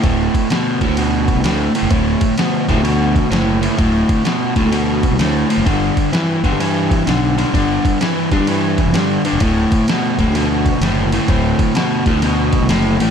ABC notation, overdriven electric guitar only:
X:1
M:4/4
L:1/8
Q:"Swing" 1/4=128
K:D
V:1 name="Overdriven electric guitar" clef=bass
[D,,A,,]2 [D,,B,,] [D,,A,,] [D,,B,,]2 [D,,A,,] [D,,A,,] | [D,,A,,]2 [D,,B,,] [D,,A,,] [D,,B,,]2 [D,,A,,] [D,,A,,] | [D,,A,,]2 [D,,B,,] [D,,A,,] [D,,B,,]2 [D,,A,,] [D,,A,,] | [G,,D,]2 [G,,E,] [G,,D,] [G,,E,]2 [G,,D,] [G,,D,] |
[G,,D,]2 [G,,E,] [G,,D,] [G,,E,]2 [G,,D,] [G,,D,] | [D,,A,,]2 [D,,B,,] [D,,A,,] [D,,B,,]2 [D,,A,,] [D,,A,,] | [D,,A,,]2 [D,,B,,] [D,,A,,] [D,,B,,]2 [D,,A,,] [D,,A,,] |]